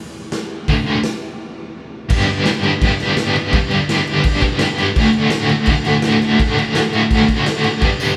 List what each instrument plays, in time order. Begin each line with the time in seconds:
0.32 snare, open hi-hat
0.68 overdriven electric guitar D2 A2 D3, kick, open hi-hat
0.85 overdriven electric guitar D2 A2 D3
1.04 snare, open hi-hat
2.09 overdriven electric guitar G2 D3 G3 B3 D4 G4, kick, crash
2.28 overdriven electric guitar G3 B3 D4 G4, crash
2.46 overdriven electric guitar G2 D3 G3 B3 D4, snare, crash
2.50 overdriven electric guitar G4
2.63 overdriven electric guitar B3 D4 G4, crash
2.68 overdriven electric guitar G3
2.82 overdriven electric guitar G3 B3, kick, crash
2.86 overdriven electric guitar D4 G4
2.99 overdriven electric guitar G2 D3 G3 B3 D4 G4, snare, crash
3.17 overdriven electric guitar G3 B3 D4, snare, crash
3.21 overdriven electric guitar G4
3.35 overdriven electric guitar G3 B3 D4 G4, crash
3.53 overdriven electric guitar G2 D3 G3 B3 D4, kick, crash
3.57 overdriven electric guitar G4
3.71 overdriven electric guitar G3 B3 D4 G4, crash
3.89 overdriven electric guitar G2 D3 G3 B3 D4 G4, snare, crash
4.07 overdriven electric guitar G3 B3 D4 G4, crash
4.24 overdriven electric guitar G3 B3, kick, crash
4.28 overdriven electric guitar D4 G4
4.41 overdriven electric guitar G2 D3 G3 B3 D4 G4, kick, snare, crash
4.59 overdriven electric guitar G3 B3 D4, snare, crash
4.64 overdriven electric guitar G4
4.78 overdriven electric guitar B3 D4 G4, snare, crash
4.83 overdriven electric guitar G3
4.96 overdriven electric guitar D2 A2 D3 A3 F#4, kick, crash
5.13 overdriven electric guitar A3 F#4, crash
5.18 overdriven electric guitar D3
5.30 overdriven electric guitar D2 A2 D3 A3, snare, crash
5.35 overdriven electric guitar F#4
5.49 overdriven electric guitar D3 A3 F#4, crash
5.66 overdriven electric guitar A2 D3, kick, crash
5.71 overdriven electric guitar A3 F#4
5.84 overdriven electric guitar D3 A3 F#4, snare, crash
5.89 overdriven electric guitar D2 A2
6.02 overdriven electric guitar A2 D3 A3 F#4, snare, crash
6.21 overdriven electric guitar D3 A3 F#4, snare, crash
6.38 overdriven electric guitar D2 A2 D3 A3, kick, crash
6.42 overdriven electric guitar F#4
6.56 overdriven electric guitar D3 A3 F#4, crash
6.74 overdriven electric guitar D2 A2 D3 A3, snare, crash
6.78 overdriven electric guitar F#4
6.93 overdriven electric guitar D3 A3 F#4, crash
7.11 overdriven electric guitar A2 D3 A3 F#4, kick, crash
7.28 overdriven electric guitar D2 A2 D3 A3 F#4, kick, snare, crash
7.46 overdriven electric guitar A2 D3 A3 F#4, snare, crash
7.63 overdriven electric guitar A3 F#4, snare, crash
7.68 overdriven electric guitar D3
7.81 overdriven electric guitar G2 D3 G3 B3 D4 G4, kick, crash
7.99 overdriven electric guitar G3 B3 D4 G4, tambourine, crash